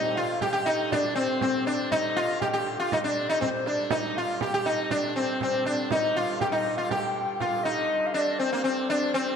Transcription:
Already playing: G2 D3 D#4 D#5
0.15 F4 F5
0.41 G4 G5, frame drum
0.52 G4 G5
0.65 D#4 D#5, frame drum
0.91 D4 D5, frame drum
1.15 C4 C5, frame drum
1.41 C4 C5, frame drum
1.67 D4 D5, frame drum
1.91 D#4 D#5, frame drum
2.16 F4, frame drum
2.40 G4 G5, frame drum
2.53 G4 G5
2.66 frame drum
2.79 F4 F5
2.91 D#4 D#5, frame drum
3.04 D4 D5
3.17 frame drum
3.29 D#4 D#5
3.41 C4 C5, frame drum
3.66 D4 D5, frame drum
3.90 G2 D3 D#4 D#5, frame drum
4.16 F4 F5, frame drum
4.41 G4 G5, frame drum
4.54 G4
4.65 D#4 D#5, frame drum
4.91 D4 D5, frame drum
5.15 C4 C5, frame drum
5.41 C4 C5, frame drum
5.65 D4, frame drum
5.91 D#4 D#5, frame drum
6.16 F4 F5, frame drum
6.40 G4 G5, frame drum
6.52 D#4 D#5
6.66 frame drum
6.77 F4 F5
6.90 G4 G5, frame drum
7.39 F4 F5, frame drum
7.63 D#4 D#5, frame drum
7.90 G2 D3
8.07 F5
8.13 D4 D#5
8.23 D5
8.31 D#5
8.39 C4 C5
8.53 A#3
8.63 C4 C5
8.87 D4 D5
9.14 C4 C5

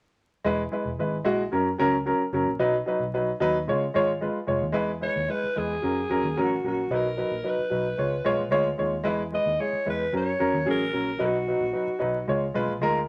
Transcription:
0.44 E1 G#3 E4 B4
0.72 G#3 E4 B4
0.85 E1
0.99 G#1 G#3 E4 B4
1.24 A#1 G#3 E4 F#4
1.52 F#2 F#3 C#4 A#4
1.79 C#2 F#3 C#4 A#4
2.06 F#3 C#4 A#4
2.32 F#1 F#3 C#4 A#4
2.46 A#1
2.59 B1 F#3 D#4 B4
2.86 F#3 D#4 B4
3.00 B1
3.14 F#3 D#4 B4
3.40 D#2 F#3 D#4 B4
3.67 C#3 G#3 F4 C#5
3.94 G#1 G#3 F4 C#5
4.21 G#3 F4 B4
4.47 F1 G#3 F4 C#5
4.62 D#2
4.72 G#3 E4 B4
5.01 G#3 E4 B4 C#5
5.16 D#2
5.28 G#3 E4 B4
5.44 muted picked electric bass stroke
5.56 E2 G#3 E4 G#4 B4
5.82 F#2 F#3 C#4 A#4
6.10 F2 F#3 C#4 A#4
6.24 D#2
6.37 A1 F#3 C#4 F#4 A#4
6.64 A#1 F#3 C#4 F#4 A#4
6.91 B1 F#3 D#4 B4
6.95 A#4
7.17 F#3 D#4 B4
7.31 A#1
7.44 F#3 D#4 B4
7.49 B4
7.59 muted picked electric bass stroke
7.70 B1 F#3 D#4 B4
7.98 C#2 G#3 F4 C#5
8.25 B1 G#3 F4 C#5
8.39 A#1
8.51 D2 G#3 F4 C#5
8.78 D#2 G#3 F4 C#5
9.04 E2 G#3 E4 B4
9.32 G#3 E4 B4 D#5
9.46 D#2
9.59 G#3 E4 G#4 C#5
9.73 muted picked electric bass stroke
9.86 E2 G#3 E4 B4
10.13 F#2 F#3 C#4 A#4
10.17 C#5
10.39 F2 F#3 C#4 A#4
10.54 D#2
10.65 A1 F#3 C#4 G#4
10.70 A#4
10.93 A#1 F#3 C#4 A#4
11.19 B1 F#3 D#4 B4
11.25 F#4
11.47 F#3 D#4 B4
11.61 A#1
11.73 F#3 D#4 B4
11.87 muted picked electric bass stroke
11.99 B1 F#3 D#4 B4
12.28 C#2 G#3 F4 C#5
12.54 B1 G#3 F4 B4
12.68 A#1
12.82 D2 G#3 F4 A#4

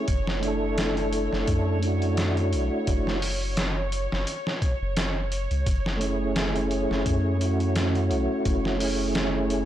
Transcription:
Already playing: C#5
0.08 F#1, kick, closed hi-hat
0.27 snare
0.40 A3 D4, closed hi-hat
0.45 E4 A4
0.78 snare, closed hi-hat
0.97 closed hi-hat
1.13 closed hi-hat
1.33 F#1, snare
1.48 F#2, kick, closed hi-hat
1.79 A3 D4, closed hi-hat
1.84 E4 F#4
2.02 closed hi-hat
2.17 snare, closed hi-hat
2.37 closed hi-hat
2.53 B1, closed hi-hat
2.87 F#1, kick, closed hi-hat
3.07 snare
3.22 open hi-hat
3.57 snare, closed hi-hat
3.92 closed hi-hat
4.12 F#1, snare
4.27 closed hi-hat
4.47 snare
4.62 kick, closed hi-hat
4.82 F#1
4.97 snare, closed hi-hat
5.32 closed hi-hat
5.51 C#2, closed hi-hat
5.66 F#1, kick, closed hi-hat
5.86 snare
5.97 A3 C#4
6.01 E4, closed hi-hat
6.05 G#4
6.36 snare, closed hi-hat
6.56 closed hi-hat
6.71 closed hi-hat
6.91 F#1, snare
7.06 F#2, kick, closed hi-hat
7.37 A3 C#4
7.41 E4 F#4, closed hi-hat
7.60 closed hi-hat
7.76 snare, closed hi-hat
7.95 closed hi-hat
8.11 B1, closed hi-hat
8.45 F#1, kick, closed hi-hat
8.65 snare
8.76 A3 C#4
8.80 E4 G#4, open hi-hat
9.15 snare, closed hi-hat
9.50 closed hi-hat

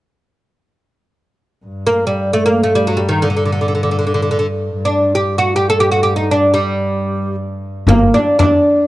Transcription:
1.65 G2
1.87 A#3
2.07 G3
2.33 A3
2.46 A#3
2.63 A3
2.75 G3
2.87 F#3
2.97 G3
3.09 D#3
3.22 D3
3.30 D3
3.37 D3
3.46 D3
3.52 D3
3.61 D3
3.68 D3
3.75 D3
3.83 D3
3.91 D3
3.99 D3
4.07 D3
4.14 D3
4.22 D3
4.31 D3
4.39 D3
4.76 G2
4.85 D4
5.15 G4
5.38 F#4
5.56 G4
5.70 A4
5.80 G4
5.92 F#4
6.03 G4
6.16 D#4
6.31 D4
6.54 G3
7.87 G1 A#3, frame drum
8.14 D4, frame drum
8.39 D4, frame drum

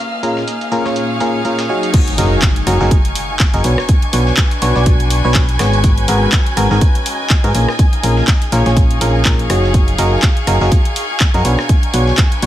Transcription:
Already playing: A#3 C#4 D#5 F5 F6
0.05 G#4
0.23 A#2 C#4 D#4 F4 G#4 A#4, closed hi-hat
0.37 snare
0.48 closed hi-hat
0.52 F5
0.61 closed hi-hat
0.72 A#2 C#4 F4 G#4 A#4 C#6, closed hi-hat
0.85 A#2 C#4 F4 G#4 C#5, snare
0.96 closed hi-hat
1.20 A#2 C#4 F4 G#4 A#4, closed hi-hat
1.45 A#2 C#4 F4 G#4 A#4, closed hi-hat
1.59 snare, closed hi-hat
1.69 F#3 D#4 F#4 G#4 C#5
1.83 closed hi-hat
1.94 G#5 G#6, kick, closed hi-hat, crash, impact
2.08 closed hi-hat
2.18 F#1 F#3 D#4 F#4 G#4 A#4, closed hi-hat, open hi-hat
2.42 kick, snare, clap, closed hi-hat
2.56 closed hi-hat
2.67 F#1 F#3 D#4 F#4 G#4 A#4, cross-stick, closed hi-hat, open hi-hat
2.81 F#1 F#3 D#4 F#4 G#4 A#4, snare
2.91 kick, closed hi-hat
3.05 closed hi-hat
3.15 closed hi-hat, open hi-hat
3.40 kick, snare, clap, closed hi-hat
3.54 F#1 D#4 F#4 G#4 A#4, closed hi-hat
3.64 B1 B2 D4 F#4 B4 C#5, closed hi-hat, open hi-hat
3.78 cross-stick, snare
3.89 kick, closed hi-hat
4.02 closed hi-hat
4.10 B1 B2 D4 F#4 B4 C#5, closed hi-hat, open hi-hat
4.27 snare
4.37 kick, snare, clap, closed hi-hat
4.51 closed hi-hat
4.62 B1 B2 D4 F#4 B4 C#5, closed hi-hat, open hi-hat
4.76 B1 B2 D4 F#4 B4 D5, snare
4.86 kick, closed hi-hat
5.00 closed hi-hat
5.10 closed hi-hat, open hi-hat
5.24 B1 B2 D4 F#4 B4 C#5
5.35 kick, snare, clap, closed hi-hat
5.49 closed hi-hat
5.59 G#1 G#2 B3 F#4 G#4 C#5, cross-stick, snare, closed hi-hat, open hi-hat
5.73 closed hi-hat
5.84 C#4, kick, closed hi-hat
5.98 closed hi-hat
6.08 G#1 G#2 B3 F#4 G#4 A#4, closed hi-hat, open hi-hat
6.32 kick, snare, clap, closed hi-hat
6.46 closed hi-hat
6.57 G#1 G#2 B3 F#4 G#4 A#4, cross-stick, closed hi-hat, open hi-hat
6.61 D#5
6.71 G#1 G#2 B3 F#4 G#4 A#4, snare
6.81 kick, closed hi-hat
6.95 closed hi-hat
7.06 closed hi-hat, open hi-hat
7.30 kick, snare, clap, closed hi-hat
7.44 G#2 B3 F#4 G#4 A#4, closed hi-hat
7.55 A#1 A#2 C#4 D#4 F4 G#4 A#4, closed hi-hat, open hi-hat
7.68 cross-stick, snare
7.79 F5, kick, closed hi-hat
7.93 G#4, closed hi-hat
8.03 A#1 A#2 C#4 F4 G#4 A#4, closed hi-hat, open hi-hat
8.17 snare
8.28 kick, snare, clap, closed hi-hat
8.42 closed hi-hat
8.52 A#1 A#2 C#4 F4 G#4 A#4 C#6, closed hi-hat, open hi-hat
8.66 A#1 A#2 C#4 F4 G#4 C#5, snare, closed hi-hat
8.77 kick, closed hi-hat
8.91 closed hi-hat
9.01 A#1 A#2 C#4 F4 G#4 A#4, closed hi-hat, open hi-hat
9.25 A#1 A#2 C#4 F4 G#4 A#4, kick, snare, clap, closed hi-hat
9.39 closed hi-hat
9.50 F#1 F#3 D#4 F#4 G#4 C#5, cross-stick, closed hi-hat, open hi-hat
9.64 snare
9.74 G#5 G#6, kick, closed hi-hat
9.88 closed hi-hat
9.98 F#1 F#3 D#4 F#4 G#4 A#4, closed hi-hat, open hi-hat
10.23 kick, snare, clap, closed hi-hat
10.37 closed hi-hat
10.47 F#1 F#3 D#4 F#4 G#4 A#4, cross-stick, closed hi-hat, open hi-hat
10.61 F#1 F#3 D#4 F#4 G#4 A#4, snare
10.72 kick, closed hi-hat
10.85 closed hi-hat
10.96 closed hi-hat, open hi-hat
11.20 kick, snare, clap, closed hi-hat
11.34 F#2 D#4 F#4 G#4 A#4, closed hi-hat
11.45 B1 B2 D4 F#4 B4 C#5, closed hi-hat, open hi-hat
11.59 cross-stick, snare
11.69 kick, closed hi-hat
11.83 closed hi-hat
11.94 B1 B2 D4 F#4 B4 C#5, closed hi-hat, open hi-hat
12.08 F#4, snare
12.18 kick, snare, clap, closed hi-hat
12.32 B4, closed hi-hat
12.42 B1 B2 D4 F#4 B4 C#5, closed hi-hat, open hi-hat

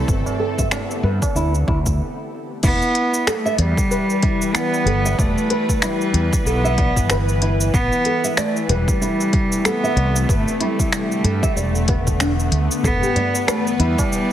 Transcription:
Already playing: A3 G4 A4
0.08 G1 D3, kick, shaker
0.26 B3, tabla na, tabla ge, shaker
0.39 A4
0.58 E5, kick, tabla ge, shaker
0.71 D5, finger snap, tabla na, shaker
0.91 shaker
1.03 G2 B4
1.22 kick, tabla na, tabla tin, shaker
1.35 D2 E4, shaker
1.54 shaker
1.67 D2 E4, kick, tabla na
1.86 kick, shaker
2.63 E1 E3 B3 E4, kick, crash, shaker
2.74 G3
2.82 B4, shaker
2.95 closed hi-hat
3.14 shaker
3.27 A3 A4, finger snap, shaker
3.45 E5, shaker
3.58 E2 G3 D5, closed hi-hat
3.77 kick, shaker
3.91 B4, shaker
4.10 shaker
4.23 E4, kick, closed hi-hat
4.42 shaker
4.55 B3, finger snap, shaker
4.74 shaker
4.86 G1 A4, closed hi-hat
5.05 E5, shaker
5.18 E1 A3 D5, kick, shaker
5.38 shaker
5.50 B4, closed hi-hat
5.69 kick, shaker
5.82 G3 E4, finger snap, shaker
6.01 shaker
6.13 E2, closed hi-hat
6.33 kick, shaker
6.45 B1 B3 A4, shaker
6.64 E5, shaker
6.78 D5, kick, closed hi-hat
6.96 G1, kick, shaker
7.10 B4, finger snap, shaker
7.29 shaker
7.42 E4, closed hi-hat
7.61 shaker
7.74 A1 B3, kick, shaker
7.91 A3, shaker
8.05 A4, closed hi-hat
8.24 E5, shaker
8.37 A3 D5, finger snap, shaker
8.56 C3, shaker
8.69 E1 G3 B4, closed hi-hat
8.78 A4
8.88 kick, shaker
9.01 E4, shaker
9.21 shaker
9.33 kick, closed hi-hat
9.52 shaker
9.65 B3 A4, finger snap, shaker
9.84 E5, shaker
9.96 C2 D5, closed hi-hat
10.16 shaker
10.23 B3
10.29 G1 D3 A3 B4, kick, shaker
10.48 shaker
10.60 G3 E4, closed hi-hat
10.79 kick, shaker
10.92 finger snap, shaker
11.01 B3
11.12 shaker
11.24 G2 A4, closed hi-hat
11.43 B4 E5, kick, shaker
11.56 E1 D5, shaker
11.75 shaker
11.88 B3, kick, closed hi-hat
12.07 kick, shaker
12.20 D4, finger snap, shaker
12.40 shaker
12.52 D2, closed hi-hat
12.71 shaker
12.83 E1 E3 B3 A4, kick, tabla ge, shaker
13.02 G4, tabla ge, shaker
13.16 G3 D5, closed hi-hat, tabla ge
13.34 tabla tin, shaker
13.47 A3 B4, finger snap, tabla na, shaker
13.66 tabla tin, shaker
13.79 E2 G3 E4, closed hi-hat
13.98 kick, tabla na, tabla tin, shaker
14.13 shaker

